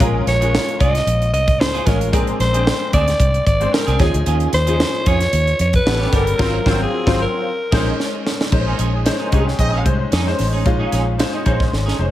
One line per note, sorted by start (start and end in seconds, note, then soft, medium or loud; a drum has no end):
0.00 0.20 A#1 loud
0.00 0.33 G#3 medium
0.00 0.24 C#4 medium
0.00 0.33 C#4 medium
0.00 0.25 F4 medium
0.00 0.33 F4 medium
0.00 0.25 G#4 medium
0.00 0.33 A#4 loud
0.00 kick loud
0.00 closed hi-hat medium
0.26 0.57 A#1 medium
0.26 0.77 C#5 loud
0.26 muted clean electric guitar stroke soft
0.26 snare soft
0.26 closed hi-hat medium
0.40 1.26 G#3 medium
0.40 1.27 C#4 medium
0.40 0.51 C#4 medium
0.40 0.51 F4 medium
0.40 1.27 F4 medium
0.40 0.50 G#4 medium
0.40 1.27 A#4 medium
0.40 closed hi-hat medium
0.55 snare loud
0.67 muted clean electric guitar stroke soft
0.67 closed hi-hat soft
0.79 1.00 C2 medium
0.79 0.94 C#4 medium
0.79 0.94 F4 medium
0.79 0.93 G#4 medium
0.79 1.30 D#5 loud
0.79 kick medium
0.79 closed hi-hat medium
0.94 muted clean electric guitar stroke medium
0.94 snare soft
0.94 closed hi-hat medium
1.06 1.33 A#1 loud
1.06 muted clean electric guitar stroke soft
1.06 closed hi-hat loud
1.20 muted clean electric guitar stroke soft
1.20 closed hi-hat soft
1.33 1.60 C2 medium
1.33 1.61 D#5 loud
1.33 closed hi-hat medium
1.47 muted clean electric guitar stroke medium
1.47 kick medium
1.47 closed hi-hat soft
1.59 1.79 C#2 loud
1.59 1.88 C5 loud
1.59 muted clean electric guitar stroke soft
1.59 snare loud
1.73 1.84 C#4 medium
1.73 1.85 F4 medium
1.73 1.86 G#4 medium
1.73 closed hi-hat soft
1.86 2.13 A1 medium
1.86 2.08 G#3 medium
1.86 1.97 C#4 medium
1.86 2.08 C#4 medium
1.86 1.98 F4 medium
1.86 2.08 F4 medium
1.86 1.98 G#4 medium
1.86 2.13 A#4 medium
1.86 2.09 C#5 medium
1.86 kick loud
1.86 snare soft
1.86 closed hi-hat medium
2.00 muted clean electric guitar stroke soft
2.00 closed hi-hat soft
2.12 2.33 A#1 loud
2.12 2.45 G#3 medium
2.12 2.37 C4 medium
2.12 2.46 C4 medium
2.12 2.38 D4 medium
2.12 2.46 D4 medium
2.12 2.38 G#4 medium
2.12 2.46 A#4 medium
2.12 kick loud
2.12 closed hi-hat medium
2.27 closed hi-hat soft
2.39 2.70 A#1 loud
2.39 2.90 C5 loud
2.39 muted clean electric guitar stroke soft
2.39 snare soft
2.39 closed hi-hat medium
2.53 3.39 G#3 medium
2.53 3.39 C4 medium
2.53 2.64 C4 medium
2.53 2.64 D4 medium
2.53 3.40 D4 medium
2.53 2.64 G#4 medium
2.53 3.40 C5 medium
2.53 closed hi-hat medium
2.67 snare loud
2.80 muted clean electric guitar stroke medium
2.92 3.13 D2 loud
2.92 3.07 C4 medium
2.92 3.07 D4 medium
2.92 3.06 G#4 medium
2.92 3.43 D5 loud
2.92 kick medium
2.92 closed hi-hat medium
3.07 muted clean electric guitar stroke soft
3.07 snare soft
3.07 closed hi-hat medium
3.19 3.39 C2 loud
3.19 muted clean electric guitar stroke soft
3.19 kick medium
3.19 closed hi-hat medium
3.34 muted clean electric guitar stroke soft
3.34 closed hi-hat soft
3.47 3.66 G#1 medium
3.47 3.75 D5 loud
3.47 kick medium
3.47 closed hi-hat medium
3.60 3.99 G#3 medium
3.60 4.00 C4 medium
3.60 4.00 D4 medium
3.60 4.00 C5 medium
3.60 muted clean electric guitar stroke soft
3.60 closed hi-hat soft
3.73 4.00 A#4 medium
3.73 muted clean electric guitar stroke soft
3.73 snare loud
3.87 3.96 C2 medium
3.87 3.99 C4 medium
3.87 3.99 D4 medium
3.87 3.99 G#4 medium
3.87 closed hi-hat soft
3.99 4.10 D#2 loud
3.99 4.53 F3 medium
3.99 4.11 C#4 medium
3.99 4.53 C#4 medium
3.99 4.53 D#4 medium
3.99 4.11 F4 medium
3.99 4.53 G#4 medium
3.99 4.11 G#4 medium
3.99 4.25 G#4 medium
3.99 kick medium
3.99 snare soft
3.99 closed hi-hat medium
4.13 4.23 D2 loud
4.13 muted clean electric guitar stroke soft
4.13 closed hi-hat medium
4.26 4.46 D#2 loud
4.26 4.51 C#4 medium
4.26 4.51 F4 medium
4.26 4.51 G#4 loud
4.26 closed hi-hat medium
4.40 closed hi-hat soft
4.52 4.83 D#2 loud
4.52 5.09 C5 loud
4.52 muted clean electric guitar stroke soft
4.52 snare soft
4.52 closed hi-hat medium
4.66 5.52 F3 medium
4.66 5.52 C#4 medium
4.66 4.77 C#4 medium
4.66 5.53 D#4 medium
4.66 4.77 F4 medium
4.66 4.77 G#4 medium
4.66 5.53 G#4 medium
4.66 closed hi-hat medium
4.80 snare loud
4.94 muted clean electric guitar stroke soft
5.06 5.26 F2 loud
5.06 5.21 C#4 medium
5.06 5.20 F4 medium
5.06 5.19 G#4 medium
5.06 5.60 C#5 loud
5.06 kick medium
5.06 closed hi-hat medium
5.20 muted clean electric guitar stroke soft
5.20 snare soft
5.20 closed hi-hat medium
5.32 5.52 D#2 loud
5.32 muted clean electric guitar stroke soft
5.32 closed hi-hat medium
5.47 muted clean electric guitar stroke soft
5.47 closed hi-hat soft
5.59 5.79 F2 medium
5.59 5.73 C#5 medium
5.59 closed hi-hat medium
5.73 6.16 B4 loud
5.73 muted clean electric guitar stroke soft
5.73 kick medium
5.73 closed hi-hat soft
5.86 6.06 A1 loud
5.86 6.08 G3 medium
5.86 6.08 B3 medium
5.86 6.08 C#4 medium
5.86 6.08 A4 medium
5.86 muted clean electric guitar stroke soft
5.86 snare loud
5.99 6.10 B3 medium
5.99 6.11 C#4 medium
5.99 6.12 G4 medium
5.99 snare soft
6.12 6.32 G1 medium
6.12 6.34 G3 medium
6.12 6.23 B3 medium
6.12 6.34 B3 medium
6.12 6.24 C#4 medium
6.12 6.35 C#4 medium
6.12 6.24 G4 medium
6.12 6.35 A4 medium
6.12 6.81 A#4 loud
6.12 kick loud
6.12 snare soft
6.12 closed hi-hat medium
6.26 muted clean electric guitar stroke soft
6.26 closed hi-hat medium
6.38 6.58 G#1 loud
6.38 6.57 F#3 medium
6.38 6.57 F#3 loud
6.38 6.53 F#3 medium
6.38 6.58 C4 loud
6.38 6.53 C4 medium
6.38 6.53 F4 loud
6.38 6.58 F4 loud
6.38 6.58 A#4 loud
6.38 6.53 C5 loud
6.38 kick loud
6.38 snare medium
6.38 crash medium
6.65 6.84 G#1 loud
6.65 6.84 F#3 loud
6.65 6.80 F#3 loud
6.65 6.85 F#3 loud
6.65 6.84 C4 loud
6.65 6.80 C4 medium
6.65 6.84 F4 loud
6.65 6.84 F4 medium
6.65 6.80 F4 loud
6.65 6.80 C5 loud
6.65 6.85 C5 loud
6.65 kick loud
6.65 snare loud
6.82 7.18 G#4 medium
7.06 7.25 G#1 loud
7.06 7.24 F#3 loud
7.06 7.21 F#3 loud
7.06 7.24 C4 loud
7.06 7.25 C4 loud
7.06 7.21 C4 medium
7.06 7.25 F4 loud
7.06 7.21 F4 medium
7.06 7.25 F4 loud
7.06 7.25 C5 loud
7.06 7.21 C5 medium
7.06 kick loud
7.06 snare loud
7.21 8.23 A#4 medium
7.72 7.91 A#1 loud
7.72 7.90 G#3 medium
7.72 7.86 G#3 medium
7.72 7.86 C4 medium
7.72 7.91 C#4 medium
7.72 7.91 C#4 loud
7.72 7.91 D#4 medium
7.72 7.86 F4 loud
7.72 7.90 G#4 medium
7.72 7.86 C5 loud
7.72 7.91 C5 medium
7.72 kick loud
7.72 snare loud
7.72 crash medium
8.00 snare medium
8.27 snare medium
8.41 snare loud
8.51 8.72 A#1 loud
8.51 8.96 G#3 medium
8.51 8.96 C#4 medium
8.51 8.96 D#4 medium
8.51 8.96 C5 medium
8.51 muted clean electric guitar stroke soft
8.51 kick loud
8.51 crash medium
8.66 8.76 F3 medium
8.66 8.76 A#3 medium
8.66 8.77 C#4 medium
8.66 8.76 D#4 medium
8.66 8.78 D#4 medium
8.66 8.79 G#4 medium
8.66 8.76 A#4 medium
8.78 9.09 A#1 medium
8.78 8.90 C#4 medium
8.78 8.90 D#4 medium
8.78 8.91 G#4 medium
8.78 closed hi-hat medium
8.93 9.03 F3 medium
8.93 9.03 G#3 medium
8.93 9.03 D#4 medium
8.93 9.03 G#4 medium
8.93 muted clean electric guitar stroke medium
9.05 9.27 G#3 medium
9.05 9.27 C#4 medium
9.05 9.28 D#4 medium
9.05 9.28 C5 medium
9.05 muted clean electric guitar stroke soft
9.05 snare loud
9.05 closed hi-hat medium
9.20 9.30 F3 medium
9.20 9.30 A#3 medium
9.20 9.30 C#4 medium
9.20 9.30 D#4 soft
9.20 9.30 D#4 medium
9.20 9.29 G#4 medium
9.20 9.30 A#4 medium
9.31 9.52 C2 medium
9.31 9.75 G#3 medium
9.31 9.44 G#3 medium
9.31 9.76 C#4 medium
9.31 9.47 C#4 medium
9.31 9.44 C#4 medium
9.31 9.76 D#4 medium
9.31 9.46 D#4 medium
9.31 9.44 F4 medium
9.31 9.39 G4 medium
9.31 9.45 G#4 medium
9.31 9.44 C#5 medium
9.31 kick medium
9.31 closed hi-hat medium
9.39 9.79 G#4 medium
9.46 muted clean electric guitar stroke soft
9.46 snare soft
9.59 9.86 A#1 medium
9.59 9.80 C4 loud
9.59 9.80 D#4 loud
9.59 9.80 G#4 loud
9.59 9.80 D#5 loud
9.59 muted clean electric guitar stroke soft
9.59 kick medium
9.59 closed hi-hat medium
9.73 9.84 C#4 medium
9.73 9.85 D#4 medium
9.73 9.85 G#4 medium
9.85 10.05 C2 medium
9.85 10.18 G#3 medium
9.85 10.18 C#4 medium
9.85 10.18 D#4 medium
9.85 10.18 C5 medium
9.85 muted clean electric guitar stroke soft
9.85 kick medium
9.85 closed hi-hat medium
10.00 muted clean electric guitar stroke soft
10.12 10.32 F2 medium
10.12 10.27 C#4 medium
10.12 10.26 D#4 loud
10.12 10.25 G#4 medium
10.12 snare loud
10.12 closed hi-hat medium
10.26 10.58 G#3 medium
10.26 10.58 C#4 medium
10.26 10.59 D#4 medium
10.26 10.59 C5 medium
10.26 muted clean electric guitar stroke soft
10.26 snare soft
10.39 10.66 A1 medium
10.39 muted clean electric guitar stroke soft
10.39 snare soft
10.39 open hi-hat medium
10.53 10.64 C#4 medium
10.53 10.63 D#4 medium
10.53 10.63 G#4 medium
10.65 10.85 A#1 loud
10.65 11.09 G#3 medium
10.65 11.09 C#4 medium
10.65 11.09 D#4 medium
10.65 11.10 F4 loud
10.65 muted clean electric guitar stroke soft
10.65 kick medium
10.65 closed hi-hat medium
10.79 10.90 C#4 medium
10.79 10.91 D#4 medium
10.79 10.92 G#4 medium
10.92 11.22 A#1 medium
10.92 11.03 C#4 medium
10.92 11.04 D#4 medium
10.92 11.04 G#4 medium
10.92 snare soft
10.92 closed hi-hat medium
11.06 muted clean electric guitar stroke medium
11.18 11.41 G#3 medium
11.18 11.41 C#4 medium
11.18 11.41 D#4 medium
11.18 11.41 C5 medium
11.18 muted clean electric guitar stroke soft
11.18 snare loud
11.18 closed hi-hat medium
11.32 11.43 C#4 medium
11.32 11.43 D#4 medium
11.32 11.43 G#4 medium
11.45 11.65 A#1 medium
11.45 11.89 G#3 medium
11.45 11.60 C#4 medium
11.45 11.90 C#4 medium
11.45 11.59 D#4 medium
11.45 11.90 D#4 medium
11.45 11.58 G#4 medium
11.45 11.90 C5 medium
11.45 kick medium
11.45 closed hi-hat medium
11.59 muted clean electric guitar stroke soft
11.59 kick medium
11.59 snare soft
11.71 11.92 G#1 medium
11.71 muted clean electric guitar stroke soft
11.71 snare soft
11.86 11.97 C#4 medium
11.86 11.98 D#4 medium
11.86 11.98 G#4 medium
11.86 snare soft
11.98 12.11 F1 medium
11.98 12.11 G#3 medium
11.98 12.11 C#4 medium
11.98 12.11 D#4 medium
11.98 12.11 C5 medium
11.98 muted clean electric guitar stroke soft